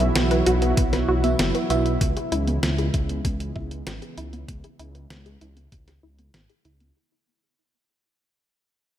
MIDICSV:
0, 0, Header, 1, 6, 480
1, 0, Start_track
1, 0, Key_signature, 4, "minor"
1, 0, Tempo, 618557
1, 1561, Time_signature, 4, 2, 24, 8
1, 6970, End_track
2, 0, Start_track
2, 0, Title_t, "FM electric piano"
2, 0, Program_c, 0, 5
2, 0, Note_on_c, 0, 59, 71
2, 0, Note_on_c, 0, 64, 63
2, 0, Note_on_c, 0, 66, 64
2, 0, Note_on_c, 0, 76, 77
2, 932, Note_off_c, 0, 59, 0
2, 932, Note_off_c, 0, 64, 0
2, 932, Note_off_c, 0, 66, 0
2, 932, Note_off_c, 0, 76, 0
2, 960, Note_on_c, 0, 59, 80
2, 960, Note_on_c, 0, 64, 73
2, 960, Note_on_c, 0, 66, 71
2, 960, Note_on_c, 0, 76, 88
2, 1291, Note_off_c, 0, 59, 0
2, 1291, Note_off_c, 0, 64, 0
2, 1291, Note_off_c, 0, 66, 0
2, 1291, Note_off_c, 0, 76, 0
2, 1320, Note_on_c, 0, 59, 90
2, 1321, Note_on_c, 0, 64, 83
2, 1321, Note_on_c, 0, 66, 81
2, 1321, Note_on_c, 0, 76, 101
2, 1531, Note_off_c, 0, 59, 0
2, 1532, Note_off_c, 0, 64, 0
2, 1532, Note_off_c, 0, 66, 0
2, 1532, Note_off_c, 0, 76, 0
2, 6970, End_track
3, 0, Start_track
3, 0, Title_t, "Synth arpeggio sound"
3, 0, Program_c, 1, 84
3, 1, Note_on_c, 1, 59, 76
3, 104, Note_off_c, 1, 59, 0
3, 121, Note_on_c, 1, 59, 78
3, 224, Note_off_c, 1, 59, 0
3, 241, Note_on_c, 1, 71, 79
3, 303, Note_off_c, 1, 71, 0
3, 361, Note_on_c, 1, 66, 104
3, 475, Note_off_c, 1, 66, 0
3, 482, Note_on_c, 1, 59, 78
3, 584, Note_off_c, 1, 59, 0
3, 602, Note_on_c, 1, 59, 77
3, 704, Note_off_c, 1, 59, 0
3, 721, Note_on_c, 1, 71, 76
3, 783, Note_off_c, 1, 71, 0
3, 842, Note_on_c, 1, 66, 99
3, 955, Note_off_c, 1, 66, 0
3, 961, Note_on_c, 1, 59, 74
3, 1064, Note_off_c, 1, 59, 0
3, 1081, Note_on_c, 1, 59, 83
3, 1184, Note_off_c, 1, 59, 0
3, 1201, Note_on_c, 1, 71, 74
3, 1263, Note_off_c, 1, 71, 0
3, 1322, Note_on_c, 1, 66, 98
3, 1435, Note_off_c, 1, 66, 0
3, 1441, Note_on_c, 1, 59, 72
3, 1544, Note_off_c, 1, 59, 0
3, 1562, Note_on_c, 1, 59, 83
3, 1664, Note_off_c, 1, 59, 0
3, 1682, Note_on_c, 1, 68, 80
3, 1743, Note_off_c, 1, 68, 0
3, 1801, Note_on_c, 1, 64, 109
3, 1915, Note_off_c, 1, 64, 0
3, 1921, Note_on_c, 1, 59, 73
3, 2024, Note_off_c, 1, 59, 0
3, 2041, Note_on_c, 1, 59, 79
3, 2144, Note_off_c, 1, 59, 0
3, 2161, Note_on_c, 1, 68, 81
3, 2223, Note_off_c, 1, 68, 0
3, 2281, Note_on_c, 1, 64, 98
3, 2395, Note_off_c, 1, 64, 0
3, 2401, Note_on_c, 1, 59, 79
3, 2504, Note_off_c, 1, 59, 0
3, 2521, Note_on_c, 1, 59, 77
3, 2624, Note_off_c, 1, 59, 0
3, 2642, Note_on_c, 1, 68, 76
3, 2703, Note_off_c, 1, 68, 0
3, 2760, Note_on_c, 1, 64, 101
3, 2874, Note_off_c, 1, 64, 0
3, 2881, Note_on_c, 1, 59, 75
3, 2984, Note_off_c, 1, 59, 0
3, 3001, Note_on_c, 1, 59, 80
3, 3104, Note_off_c, 1, 59, 0
3, 3121, Note_on_c, 1, 68, 77
3, 3183, Note_off_c, 1, 68, 0
3, 3241, Note_on_c, 1, 64, 105
3, 3355, Note_off_c, 1, 64, 0
3, 3361, Note_on_c, 1, 59, 73
3, 3464, Note_off_c, 1, 59, 0
3, 3481, Note_on_c, 1, 59, 82
3, 3584, Note_off_c, 1, 59, 0
3, 3601, Note_on_c, 1, 68, 83
3, 3663, Note_off_c, 1, 68, 0
3, 3721, Note_on_c, 1, 64, 102
3, 3835, Note_off_c, 1, 64, 0
3, 3840, Note_on_c, 1, 59, 79
3, 3944, Note_off_c, 1, 59, 0
3, 3961, Note_on_c, 1, 59, 78
3, 4064, Note_off_c, 1, 59, 0
3, 4081, Note_on_c, 1, 68, 77
3, 4143, Note_off_c, 1, 68, 0
3, 4201, Note_on_c, 1, 64, 96
3, 4315, Note_off_c, 1, 64, 0
3, 4321, Note_on_c, 1, 59, 74
3, 4424, Note_off_c, 1, 59, 0
3, 4442, Note_on_c, 1, 59, 75
3, 4544, Note_off_c, 1, 59, 0
3, 4562, Note_on_c, 1, 68, 76
3, 4623, Note_off_c, 1, 68, 0
3, 4681, Note_on_c, 1, 64, 97
3, 4795, Note_off_c, 1, 64, 0
3, 4802, Note_on_c, 1, 59, 71
3, 4905, Note_off_c, 1, 59, 0
3, 4922, Note_on_c, 1, 59, 75
3, 5025, Note_off_c, 1, 59, 0
3, 5042, Note_on_c, 1, 68, 78
3, 5103, Note_off_c, 1, 68, 0
3, 5162, Note_on_c, 1, 64, 101
3, 5275, Note_off_c, 1, 64, 0
3, 5282, Note_on_c, 1, 59, 72
3, 5385, Note_off_c, 1, 59, 0
3, 6970, End_track
4, 0, Start_track
4, 0, Title_t, "Analog synth pad"
4, 0, Program_c, 2, 89
4, 0, Note_on_c, 2, 47, 82
4, 0, Note_on_c, 2, 52, 72
4, 0, Note_on_c, 2, 54, 72
4, 0, Note_on_c, 2, 64, 93
4, 0, Note_on_c, 2, 66, 88
4, 1530, Note_off_c, 2, 52, 0
4, 1542, Note_off_c, 2, 47, 0
4, 1542, Note_off_c, 2, 54, 0
4, 1542, Note_off_c, 2, 66, 0
4, 1561, Note_on_c, 2, 56, 73
4, 1562, Note_on_c, 2, 49, 76
4, 1562, Note_on_c, 2, 52, 70
4, 1562, Note_on_c, 2, 59, 72
4, 5370, Note_off_c, 2, 49, 0
4, 5370, Note_off_c, 2, 52, 0
4, 5370, Note_off_c, 2, 56, 0
4, 5370, Note_off_c, 2, 59, 0
4, 5370, Note_off_c, 2, 64, 0
4, 6970, End_track
5, 0, Start_track
5, 0, Title_t, "Detuned saw bass"
5, 0, Program_c, 3, 39
5, 0, Note_on_c, 3, 35, 84
5, 88, Note_off_c, 3, 35, 0
5, 120, Note_on_c, 3, 35, 89
5, 328, Note_off_c, 3, 35, 0
5, 361, Note_on_c, 3, 35, 101
5, 568, Note_off_c, 3, 35, 0
5, 600, Note_on_c, 3, 35, 99
5, 808, Note_off_c, 3, 35, 0
5, 840, Note_on_c, 3, 35, 99
5, 1048, Note_off_c, 3, 35, 0
5, 1081, Note_on_c, 3, 30, 82
5, 1185, Note_off_c, 3, 30, 0
5, 1320, Note_on_c, 3, 35, 103
5, 1528, Note_off_c, 3, 35, 0
5, 1560, Note_on_c, 3, 37, 102
5, 1664, Note_off_c, 3, 37, 0
5, 1801, Note_on_c, 3, 37, 84
5, 2008, Note_off_c, 3, 37, 0
5, 2041, Note_on_c, 3, 37, 88
5, 2248, Note_off_c, 3, 37, 0
5, 2280, Note_on_c, 3, 37, 94
5, 2488, Note_off_c, 3, 37, 0
5, 2520, Note_on_c, 3, 37, 103
5, 2728, Note_off_c, 3, 37, 0
5, 2760, Note_on_c, 3, 37, 100
5, 2968, Note_off_c, 3, 37, 0
5, 3001, Note_on_c, 3, 32, 81
5, 3104, Note_off_c, 3, 32, 0
5, 3241, Note_on_c, 3, 37, 100
5, 3448, Note_off_c, 3, 37, 0
5, 3480, Note_on_c, 3, 37, 102
5, 3584, Note_off_c, 3, 37, 0
5, 3720, Note_on_c, 3, 37, 83
5, 3928, Note_off_c, 3, 37, 0
5, 3960, Note_on_c, 3, 37, 88
5, 4168, Note_off_c, 3, 37, 0
5, 4200, Note_on_c, 3, 37, 94
5, 4408, Note_off_c, 3, 37, 0
5, 4440, Note_on_c, 3, 37, 100
5, 4648, Note_off_c, 3, 37, 0
5, 4680, Note_on_c, 3, 37, 99
5, 4888, Note_off_c, 3, 37, 0
5, 4920, Note_on_c, 3, 32, 76
5, 5024, Note_off_c, 3, 32, 0
5, 5160, Note_on_c, 3, 37, 98
5, 5368, Note_off_c, 3, 37, 0
5, 6970, End_track
6, 0, Start_track
6, 0, Title_t, "Drums"
6, 1, Note_on_c, 9, 42, 38
6, 78, Note_off_c, 9, 42, 0
6, 120, Note_on_c, 9, 38, 113
6, 120, Note_on_c, 9, 42, 85
6, 198, Note_off_c, 9, 38, 0
6, 198, Note_off_c, 9, 42, 0
6, 241, Note_on_c, 9, 42, 42
6, 318, Note_off_c, 9, 42, 0
6, 361, Note_on_c, 9, 42, 72
6, 438, Note_off_c, 9, 42, 0
6, 480, Note_on_c, 9, 42, 39
6, 558, Note_off_c, 9, 42, 0
6, 600, Note_on_c, 9, 36, 119
6, 600, Note_on_c, 9, 42, 96
6, 678, Note_off_c, 9, 36, 0
6, 678, Note_off_c, 9, 42, 0
6, 721, Note_on_c, 9, 38, 37
6, 721, Note_on_c, 9, 42, 39
6, 798, Note_off_c, 9, 38, 0
6, 798, Note_off_c, 9, 42, 0
6, 961, Note_on_c, 9, 42, 42
6, 1039, Note_off_c, 9, 42, 0
6, 1080, Note_on_c, 9, 38, 121
6, 1080, Note_on_c, 9, 42, 89
6, 1158, Note_off_c, 9, 38, 0
6, 1158, Note_off_c, 9, 42, 0
6, 1201, Note_on_c, 9, 42, 41
6, 1278, Note_off_c, 9, 42, 0
6, 1320, Note_on_c, 9, 42, 70
6, 1398, Note_off_c, 9, 42, 0
6, 1441, Note_on_c, 9, 42, 38
6, 1518, Note_off_c, 9, 42, 0
6, 1560, Note_on_c, 9, 36, 120
6, 1561, Note_on_c, 9, 42, 98
6, 1638, Note_off_c, 9, 36, 0
6, 1638, Note_off_c, 9, 42, 0
6, 1681, Note_on_c, 9, 42, 37
6, 1759, Note_off_c, 9, 42, 0
6, 1801, Note_on_c, 9, 42, 67
6, 1878, Note_off_c, 9, 42, 0
6, 1921, Note_on_c, 9, 42, 36
6, 1998, Note_off_c, 9, 42, 0
6, 2041, Note_on_c, 9, 38, 116
6, 2041, Note_on_c, 9, 42, 92
6, 2118, Note_off_c, 9, 38, 0
6, 2118, Note_off_c, 9, 42, 0
6, 2161, Note_on_c, 9, 42, 40
6, 2238, Note_off_c, 9, 42, 0
6, 2280, Note_on_c, 9, 36, 109
6, 2281, Note_on_c, 9, 42, 67
6, 2358, Note_off_c, 9, 36, 0
6, 2358, Note_off_c, 9, 42, 0
6, 2401, Note_on_c, 9, 42, 38
6, 2478, Note_off_c, 9, 42, 0
6, 2520, Note_on_c, 9, 36, 121
6, 2520, Note_on_c, 9, 42, 91
6, 2598, Note_off_c, 9, 36, 0
6, 2598, Note_off_c, 9, 42, 0
6, 2641, Note_on_c, 9, 42, 39
6, 2718, Note_off_c, 9, 42, 0
6, 2760, Note_on_c, 9, 36, 65
6, 2838, Note_off_c, 9, 36, 0
6, 2881, Note_on_c, 9, 42, 39
6, 2958, Note_off_c, 9, 42, 0
6, 3001, Note_on_c, 9, 38, 114
6, 3001, Note_on_c, 9, 42, 90
6, 3078, Note_off_c, 9, 38, 0
6, 3078, Note_off_c, 9, 42, 0
6, 3120, Note_on_c, 9, 42, 38
6, 3198, Note_off_c, 9, 42, 0
6, 3240, Note_on_c, 9, 42, 66
6, 3318, Note_off_c, 9, 42, 0
6, 3360, Note_on_c, 9, 42, 37
6, 3438, Note_off_c, 9, 42, 0
6, 3480, Note_on_c, 9, 36, 118
6, 3480, Note_on_c, 9, 42, 91
6, 3557, Note_off_c, 9, 36, 0
6, 3558, Note_off_c, 9, 42, 0
6, 3601, Note_on_c, 9, 42, 35
6, 3678, Note_off_c, 9, 42, 0
6, 3721, Note_on_c, 9, 42, 63
6, 3798, Note_off_c, 9, 42, 0
6, 3841, Note_on_c, 9, 42, 35
6, 3919, Note_off_c, 9, 42, 0
6, 3961, Note_on_c, 9, 38, 111
6, 3961, Note_on_c, 9, 42, 88
6, 4038, Note_off_c, 9, 38, 0
6, 4038, Note_off_c, 9, 42, 0
6, 4081, Note_on_c, 9, 42, 39
6, 4159, Note_off_c, 9, 42, 0
6, 4201, Note_on_c, 9, 42, 61
6, 4278, Note_off_c, 9, 42, 0
6, 4320, Note_on_c, 9, 42, 39
6, 4398, Note_off_c, 9, 42, 0
6, 4440, Note_on_c, 9, 36, 116
6, 4440, Note_on_c, 9, 42, 83
6, 4518, Note_off_c, 9, 36, 0
6, 4518, Note_off_c, 9, 42, 0
6, 4560, Note_on_c, 9, 38, 37
6, 4560, Note_on_c, 9, 42, 38
6, 4638, Note_off_c, 9, 38, 0
6, 4638, Note_off_c, 9, 42, 0
6, 4800, Note_on_c, 9, 42, 37
6, 4878, Note_off_c, 9, 42, 0
6, 4920, Note_on_c, 9, 38, 107
6, 4920, Note_on_c, 9, 42, 78
6, 4998, Note_off_c, 9, 38, 0
6, 4998, Note_off_c, 9, 42, 0
6, 5040, Note_on_c, 9, 42, 37
6, 5118, Note_off_c, 9, 42, 0
6, 5160, Note_on_c, 9, 42, 61
6, 5238, Note_off_c, 9, 42, 0
6, 5280, Note_on_c, 9, 42, 36
6, 5358, Note_off_c, 9, 42, 0
6, 6970, End_track
0, 0, End_of_file